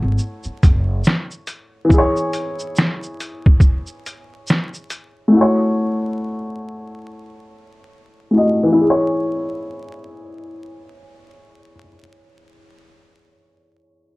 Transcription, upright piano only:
Already playing: A3 E4 F#4 C#5
1.85 E3
1.89 E4
1.94 G#4
1.98 C#5
5.28 A3
5.32 E4
5.37 F#4
5.41 C#5
8.31 A3 E4
8.35 F#4 D#5
8.63 E3
8.72 E4
8.81 G#4
8.90 C#5

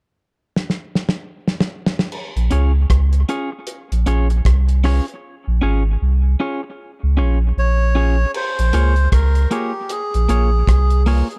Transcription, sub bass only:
2.36 A#1
2.52 C#2
2.90 C#2
3.92 A#1
4.07 A#1
4.46 C2
5.47 A#1
5.63 G#1
6.02 C2
7.03 C#2
7.19 A#1
7.57 A#1
8.59 A#1
8.74 C#2
9.13 C#2
10.15 A#1
10.29 A#1
10.68 C2

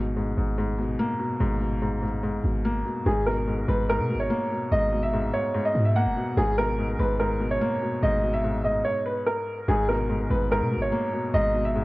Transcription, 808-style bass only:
Already playing: G#1
0.37 G#1
1.41 G#1
2.44 G#1
3.06 G#1
3.68 G#1
3.99 B2
4.15 G#1
4.72 G#1
5.75 G#2
6.06 F#1
6.37 G#1
6.99 G#1
8.03 G#1
9.68 G#1
10.30 G#1
10.61 B2
10.77 G#1
11.34 G#1

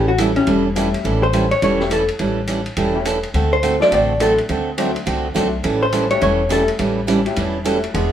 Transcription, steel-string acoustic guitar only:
Already playing: E4 A4
0.18 E3 G3 C#4 E4 A4
0.46 E3 G3 C#4 E4 A4
0.76 E3 G3 C#4 E4 A4
1.04 E3 G3 C#4 E4 A4
1.33 E3 G3 C#4 E4 A4
1.62 E3 G3 C#4 E4 A4
1.90 E3 G3 C#4 E4 A4
2.19 E3 G3 C#4 E4 A4
2.48 E3 G3 C#4 E4 A4
2.77 E3 G3 C#4 E4 A4
3.05 E3 G3 C#4 E4 A4
3.34 D3 A3 C4 F#4 A4
3.63 D3 A3 C4 F#4 A4
3.91 D3 A3 C4 F#4 A4
4.20 D3 A3 C4 F#4 A4
4.49 D3 A3 C4 F#4 A4
4.78 D3 A3 C4 F#4 A4
5.06 D3 A3 C4 F#4 A4
5.34 D3 A3 C4 F#4 A4
5.63 E3 G3 C#4 E4 A4
5.92 E3 G3 C#4 E4 A4
6.21 E3 G3 C#4 E4 A4
6.49 E3 G3 C#4 E4 A4
6.79 E3 G3 C#4 E4 A4
7.07 E3 G3 C#4 E4 A4
7.36 E3 G3 C#4 E4 A4
7.64 E3 G3 C#4 E4 A4
7.94 E3 B3 D4 G#4

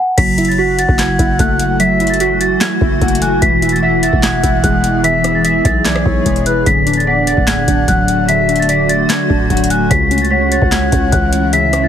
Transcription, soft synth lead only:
0.58 F#5
1.80 E5
3.01 F#5
3.22 G#5
3.83 F#5
5.04 E5
5.85 D5
6.06 C#5
6.46 B4
7.07 F#5
8.29 E5
9.50 F#5
9.70 G#5
10.31 F#5
11.53 E5

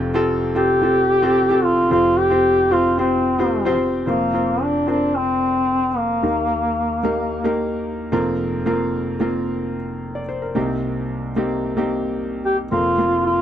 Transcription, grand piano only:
Already playing: F1 F2 C4 F4 G4 A4
0.14 C4 F4 G4 A4
0.55 C4 F4 G4 A4
0.82 C4 F4 G4 A4
1.22 C4 F4 G4 A4
1.50 C4 F4 G4 A4
1.90 F1 F2 C4 F4 G4 C5
2.30 C4 F4 G4 C5
2.71 C4 F4 G4 C5
2.98 C4 F4 G4 C5
3.38 C4 F4 G4 C5
3.65 C4 F4 G4 C5
4.06 F1 F2 C4 F4 A#4 C5
4.34 C4 F4 A#4 C5
4.87 C4 F4 A#4 C5
6.23 D#2 D#3 A#3 D#4 G4 A#4
7.03 A#3 D#4 G4 A#4
7.44 A#3 D#4 G4 A#4
8.12 F1 F2 A#3 C4 F4 A#4
8.66 A#3 C4 F4 A#4
9.20 A#3 C4 F4 A#4
10.15 D5
10.29 C5
10.42 A#4
10.55 C2 C3 A#3 C4 D#4 G4
11.36 A#3 C4 D#4 G4
11.77 A#3 C4 D#4 G4
12.71 F1 F2 A#3 C4 F4 A#4
12.98 A#3 C4 F4 A#4

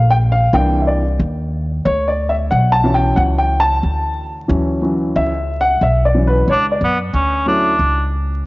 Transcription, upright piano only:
Already playing: F3 A3 A#3
0.11 G5
0.32 F5
0.53 E3 A#3 D4 G5
0.82 E5
0.87 D5
1.85 C#5
2.08 D5
2.29 E5
2.50 F#5
2.72 A5
2.83 E3 F#3 C#4
2.94 G5
3.16 F#5
3.38 G5
3.60 A5
4.48 E3 F#3 C#4
4.82 E3 F#3 C#4
5.16 E5
5.61 F#5
5.83 E5
6.05 D5
6.15 E3 F#3 C#4
6.28 B4
6.50 C#5
6.72 D5
7.46 F#3 A3 C#4 E4

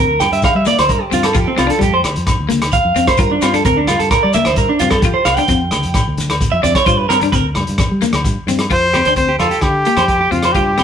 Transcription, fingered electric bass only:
Already playing: D2
0.22 G2
0.32 G2
0.55 G3
0.79 D2
0.90 G2
1.13 G2
1.35 F2
1.58 C2
1.81 F2
2.05 D2
2.17 F2
2.39 D2
2.85 F2
2.96 F2
3.19 G2
3.42 G2
3.65 D2
3.88 G2
4.00 G2
4.24 G3
4.47 D2
4.57 G2
4.81 G2
5.02 F2
5.25 C2
5.49 F2
5.72 D2
5.85 F2
6.08 D2
6.53 F2
6.64 F2
6.87 G2
7.10 G2
7.33 D2
7.57 G2
7.69 G2
7.91 G3
8.13 D2
8.25 G2
8.47 G2
8.71 F2
9.05 D2
9.39 F2
9.62 D3
9.97 F2
10.31 F2
10.55 G2

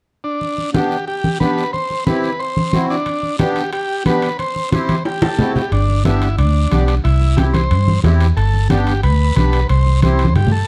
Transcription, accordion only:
0.74 B3 D4 G4
1.40 B3 D4 G4
2.07 C4 E4 G4
2.73 C4 E4 F#4
3.39 B3 D4 G4
4.06 B3 D4 G4
4.72 C4 E4 G4
5.38 C4 E4 F#4
6.04 B3 D4 G4
6.72 B3 D4 G4
7.38 C4 E4 G4
8.03 C4 E4 G4
8.70 B3 D4 G4
9.37 B3 D4 G4
10.03 C4 E4 G4

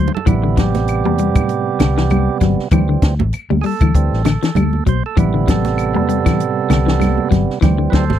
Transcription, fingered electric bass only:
0.27 A1
1.06 E2
1.36 A2
1.80 C2
2.41 G1
2.58 muted fingered electric bass stroke
2.72 D2
3.02 D2
3.19 A1
3.34 muted fingered electric bass stroke
3.50 D2
3.81 D2
3.95 D2
4.13 A1
4.56 D2
4.87 B1
5.17 A1
5.96 E2
6.27 A2
6.70 C2
7.32 G1
7.49 muted fingered electric bass stroke
7.63 D2
7.93 D2
8.10 A1

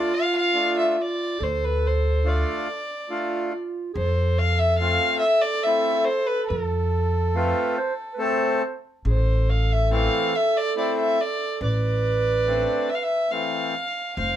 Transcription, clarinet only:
Already playing: F4
1.39 A4
3.09 F4
3.52 F4
3.93 A4
7.36 B4
7.77 C5
8.14 B4
8.21 C5
9.06 A4
11.62 B4
14.18 C5

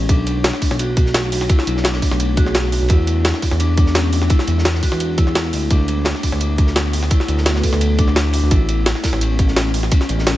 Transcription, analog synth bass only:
0.09 B1
0.71 B1
1.67 B1
2.11 B1
2.81 B1
2.90 E2
3.52 E2
4.48 E2
4.92 E2
5.53 D2
5.71 D2
6.32 D2
7.28 D2
7.73 D2
8.43 D2
8.51 A1
9.13 A1
10.09 A1

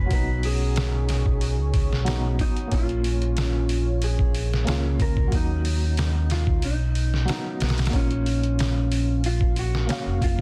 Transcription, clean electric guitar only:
Already playing: B4
0.13 B4
0.45 G#4
2.41 D#4
2.74 F4
4.04 G#4
5.02 A#4
5.35 D#4
6.32 F4
6.65 D#4
7.64 B3
7.96 C#4
9.26 F4
9.59 F#4
10.24 F4

